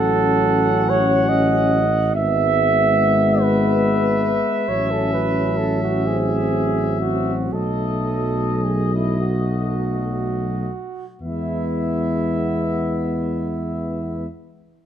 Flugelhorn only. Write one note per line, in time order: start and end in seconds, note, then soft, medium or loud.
0.00 0.91 A4 medium
0.89 1.30 C#5 medium
1.29 2.14 D#5 medium
2.16 3.43 E5 medium
3.41 4.70 B4 medium
4.68 4.93 C#5 medium
4.91 5.13 A4 medium
5.13 5.59 B4 medium
5.57 5.81 A4 medium
5.83 6.08 F#4 medium
6.07 7.00 G#4 medium
7.01 7.54 F#4 medium
7.52 8.65 A4 medium
8.63 8.92 G#4 soft
8.94 9.20 E4 soft
9.20 11.06 F#4 soft
11.23 14.26 E4 soft